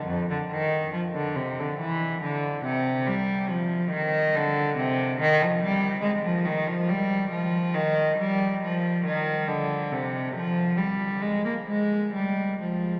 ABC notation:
X:1
M:3/4
L:1/16
Q:1/4=70
K:Dphr
V:1 name="Cello" clef=bass
F,, D, E,2 F, D, C, D, =E,2 D,2 | C,2 G,2 F,2 E,2 D,2 C,2 | [K:Fdor] E, F, G,2 A, F, E, F, G,2 F,2 | E,2 G,2 F,2 E,2 D,2 C,2 |
F,2 G,2 A, B, A,2 G,2 F,2 |]